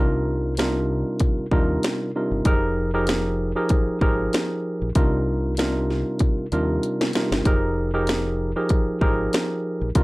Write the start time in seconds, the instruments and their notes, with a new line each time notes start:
Already playing: fingered electric bass C2, tine electric piano C3 G3 D4 D#4 F4 A#4
0.57 tine electric piano C3 G3 D4 D#4 F4 A#4, snare, closed hi-hat
1.20 kick, closed hi-hat
1.38 muted fingered electric bass stroke
1.51 fingered electric bass D#2, tine electric piano C3 G3 D4 D#4 F4 A#4, kick
1.83 snare, closed hi-hat
2.15 tine electric piano C3 G3 D4 D#4 F4 A#4
2.31 fingered electric bass G1
2.45 fingered electric bass F1, tine electric piano F3 D#4 G4 G#4 A#4, kick, closed hi-hat
2.94 tine electric piano F3 D#4 G4 G#4 A#4
3.07 snare, closed hi-hat
3.55 tine electric piano F3 D#4 G4 G#4 A#4
3.69 kick, closed hi-hat
3.88 muted fingered electric bass stroke
4.01 fingered electric bass G#1, tine electric piano F3 D#4 G4 G#4 A#4, kick
4.33 snare, closed hi-hat
4.82 fingered electric bass A#1
4.95 fingered electric bass C2, tine electric piano C3 G3 D4 D#4 F4 A#4, kick, closed hi-hat
5.57 tine electric piano C3 G3 D4 D#4 F4 A#4, snare, closed hi-hat
5.90 snare
6.19 kick, closed hi-hat
6.38 muted fingered electric bass stroke
6.52 fingered electric bass D#2, tine electric piano C3 G3 D4 D#4 F4 A#4, closed hi-hat
6.83 closed hi-hat
7.01 snare
7.13 tine electric piano C3 G3 D4 D#4 F4 A#4, snare, closed hi-hat
7.32 fingered electric bass G1, snare
7.45 fingered electric bass F1, tine electric piano F3 D#4 G4 G#4 A#4, kick, closed hi-hat
7.93 tine electric piano F3 D#4 G4 G#4 A#4
8.07 snare, closed hi-hat
8.56 tine electric piano F3 D#4 G4 G#4 A#4
8.69 kick, closed hi-hat
8.88 muted fingered electric bass stroke
9.01 fingered electric bass G#1, tine electric piano F3 D#4 G4 G#4 A#4, kick
9.33 snare, closed hi-hat
9.81 fingered electric bass A#1
9.95 fingered electric bass C2, tine electric piano C3 G3 D4 D#4 F4 A#4, kick, closed hi-hat